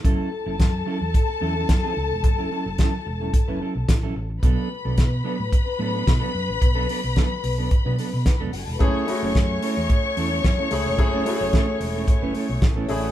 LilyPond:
<<
  \new Staff \with { instrumentName = "String section" } { \time 4/4 \key fis \minor \tempo 4 = 110 <a' a''>1~ | <a' a''>2.~ <a' a''>8 r8 | <b' b''>1~ | <b' b''>2.~ <b' b''>16. r32 <fis' fis''>32 <gis' gis''>32 <a' a''>32 <b' b''>32 |
<cis'' cis'''>1~ | <cis'' cis'''>2. r32 <a a'>32 <b b'>32 <cis' cis''>32 <d' d''>32 <e' e''>32 <fis' fis''>32 r32 | }
  \new Staff \with { instrumentName = "Grand piano" } { \time 4/4 \key fis \minor r1 | r1 | r1 | r1 |
<a cis' e' gis'>8 <a cis' e' fis'>2 r4 <a cis' e' gis'>8 | <a cis' e' gis'>8 <a cis' e' fis' gis'>2 r4 <a cis' e' gis'>8 | }
  \new Staff \with { instrumentName = "Clean electric guitar" } { \time 4/4 \key fis \minor <fis cis' e' a'>8 r16 <fis cis' e' a'>16 r8 <fis cis' e' a'>16 r8. <fis cis' e' a'>16 <fis cis' e' a'>16 r16 <fis cis' e' a'>16 r8 | r16 <fis cis' e' a'>16 <fis cis' e' a'>16 r16 <fis cis' e' a'>16 r8 <fis cis' e' a'>16 r16 <fis cis' e' b'>16 <fis cis' e' a'>16 r8 <fis cis' e' a'>16 r8 | <fis b d' a'>8 r16 <fis b d' a'>16 r8 <fis b d' a'>16 r8. <fis b d' a'>16 <fis b d' a'>16 r16 <fis b d' a'>16 r8 | r16 <fis b d' a'>16 <fis b d' a'>16 r16 <fis b d' a'>16 r8 <fis b d' a'>16 r16 <fis b d' b'>16 <fis b d' a'>16 r8 <fis b d' a'>16 r8 |
<a cis' e' a'>8 r16 <a cis' e' a'>16 r8 <a cis' e' a'>16 r8. <a cis' e' a'>16 <a cis' e' a'>16 r16 <a cis' e' a'>16 r8 | r16 <a cis' e' a'>16 <e' a'>16 r16 <a cis' e' a'>16 r8 <a cis' e' a'>16 r16 <a cis' e' b'>16 <a cis' e' a'>16 r8 <a cis' e' a'>16 r8 | }
  \new Staff \with { instrumentName = "Fingered electric bass" } { \clef bass \time 4/4 \key fis \minor fis,,16 r8 fis,,16 fis,8 r16 e,16 r8 e,8 fis,16 r16 cis,16 e,,16 | fis,,8 r16 fis,,16 r8 e,,8 r16 fis,,16 r16 b,,16 a,,8 a,,8 | b,,16 r8 b,,16 b,8 r16 a,16 r8 a,8 b,16 r16 fis,16 a,,16 | b,,8 r16 b,,16 r8 b,,8 r16 b,16 r16 b,16 r16 e,,16 fis,,16 e,,16 |
fis,,16 r8 fis,,16 fis,8 r16 e,16 r8 e,8 fis,16 r16 cis,16 e,,16 | fis,,8 r16 fis,,16 r8 e,,8 r16 fis,,16 r16 b,,16 a,,8 a,,8 | }
  \new DrumStaff \with { instrumentName = "Drums" } \drummode { \time 4/4 <hh bd>4 <hh bd sn>4 <hh bd>4 <hh bd sn>4 | <hh bd>4 <hh bd sn>4 <hh bd>4 <hh bd sn>4 | <hh bd>4 <hh bd sn>4 <hh bd>4 <hh bd sn>4 | <hh bd>8 hho8 <hh bd sn>8 hho8 <hh bd>8 hho8 <hh bd sn>8 hho8 |
<hh bd>8 hho8 <hh bd sn>8 hho8 <hh bd>8 hho8 <hh bd sn>8 hho8 | <hh bd>8 hho8 <hh bd sn>8 hho8 <hh bd>8 hho8 <hh bd sn>8 hho8 | }
>>